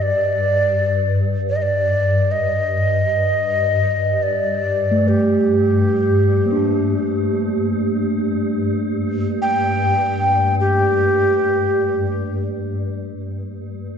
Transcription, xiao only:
0.02 D5
1.49 D5
1.56 D#5
1.62 D5
2.31 D#5
4.23 D5
5.08 G4
9.42 G5
10.60 G4

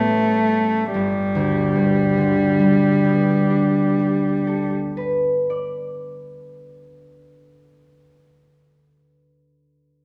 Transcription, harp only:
Already playing: A1 G3 A3 B3 C#4
0.94 G1
1.35 D2
1.75 G2
2.17 D3
2.59 G3
3.04 B3
3.50 D4
3.99 G4
4.47 A4
4.97 B4
5.50 D5

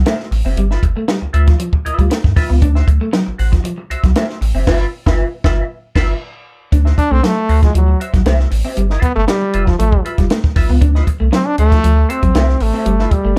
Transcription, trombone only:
6.98 D4
7.12 C4
7.25 A3
7.64 G#3
7.76 F#3
9.02 B3
9.15 A3
9.28 G3
9.68 F3
9.79 A3
11.33 C4
11.47 D4
11.60 A3
12.10 C4
12.62 A3
13.12 G3

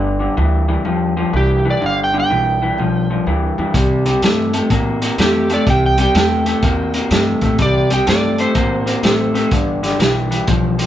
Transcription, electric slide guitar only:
1.37 G4
1.70 D5
1.86 F5
2.04 G5
2.20 G5
5.21 G4
5.54 D5
5.70 G5
5.86 G5
6.01 G5
7.62 D5
7.94 G5
8.09 D5
8.41 C5

